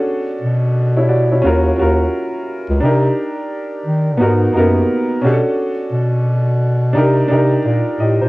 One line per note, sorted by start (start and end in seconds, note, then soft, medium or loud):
0.00 0.83 C#4 medium
0.00 0.83 D4 medium
0.00 0.75 F#4 medium
0.00 0.79 A4 medium
0.41 1.40 B2 medium
0.97 1.09 E4 medium
0.97 1.09 C#5 medium
1.09 1.30 F#4 medium
1.09 1.30 D5 medium
1.32 1.65 E4 medium
1.32 1.64 C#5 medium
1.42 1.72 D#2 medium
1.42 1.72 C#4 medium
1.42 1.73 F4 medium
1.42 1.74 F#4 medium
1.47 1.75 A#4 medium
1.76 2.07 D#2 medium
1.76 2.61 C#4 medium
1.76 2.62 F4 medium
1.76 2.63 F#4 medium
1.81 2.64 A#4 medium
2.70 2.80 C#2 medium
2.80 3.10 C3 loud
2.80 3.90 D4 medium
2.80 3.90 D#4 medium
2.80 3.91 G4 medium
2.85 3.92 A#4 medium
3.86 4.21 D#3 medium
4.17 4.48 G#2 medium
4.17 4.48 B3 medium
4.17 4.49 D#4 medium
4.17 4.50 F#4 medium
4.22 4.50 A#4 medium
4.52 4.83 F#2 medium
4.52 4.61 A#3 medium
4.52 5.23 D#4 medium
4.52 5.23 F#4 medium
4.57 5.25 B3 medium
4.57 5.24 A#4 medium
5.21 5.41 B2 medium
5.21 6.34 C#4 medium
5.21 6.35 D4 medium
5.21 6.36 F#4 medium
5.26 5.33 G#4 medium
5.33 6.40 A4 medium
5.92 6.92 B2 medium
6.93 7.24 C3 medium
6.93 7.24 D4 medium
6.93 7.25 D#4 medium
6.93 7.25 G4 medium
6.98 7.26 A#4 medium
7.28 7.59 C3 medium
7.28 7.63 D4 medium
7.28 7.64 D#4 medium
7.28 7.65 G4 medium
7.33 7.66 A#4 medium
7.65 7.83 A#2 medium
7.65 7.98 F4 soft
7.65 7.98 D5 medium
8.00 8.18 A2 medium
8.00 8.21 G4 medium
8.00 8.20 D#5 medium
8.21 8.29 A#2 medium
8.21 8.29 D#4 medium
8.21 8.29 C5 medium